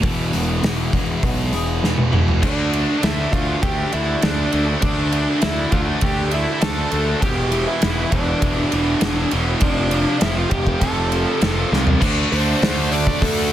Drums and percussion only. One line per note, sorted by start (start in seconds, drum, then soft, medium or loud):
0.03 kick loud
0.03 open hi-hat medium
0.33 open hi-hat medium
0.63 snare loud
0.63 open hi-hat medium
0.93 kick medium
0.93 open hi-hat soft
1.23 kick loud
1.23 open hi-hat medium
1.53 open hi-hat medium
1.84 snare medium
1.98 high tom medium
2.13 mid tom medium
2.28 floor tom medium
2.43 kick loud
2.43 crash loud
2.73 ride medium
3.03 snare loud
3.03 ride loud
3.33 kick medium
3.33 ride medium
3.63 kick loud
3.63 ride medium
3.92 ride medium
4.22 snare loud
4.22 ride medium
4.53 ride medium
4.82 kick loud
4.82 ride loud
5.12 ride medium
5.42 snare loud
5.42 ride medium
5.72 kick medium
5.72 ride medium
6.01 kick loud
6.01 ride medium
6.31 ride medium
6.62 snare loud
6.62 ride medium
6.92 ride medium
7.22 kick loud
7.22 ride medium
7.52 ride medium
7.82 snare loud
7.82 ride loud
8.12 kick medium
8.12 ride medium
8.42 kick loud
8.42 ride loud
8.72 ride medium
9.01 snare loud
9.01 ride medium
9.31 ride medium
9.61 kick loud
9.61 ride loud
9.91 ride medium
10.21 snare loud
10.21 ride medium
10.51 kick medium
10.51 ride medium
10.67 kick medium
10.81 kick loud
10.81 ride medium
11.12 ride medium
11.42 snare loud
11.42 ride medium
11.73 snare medium
11.87 floor tom medium
12.02 kick loud
12.02 crash loud
12.32 open hi-hat medium
12.62 snare loud
12.62 open hi-hat medium
12.92 open hi-hat medium
13.07 kick medium
13.22 kick loud
13.22 open hi-hat medium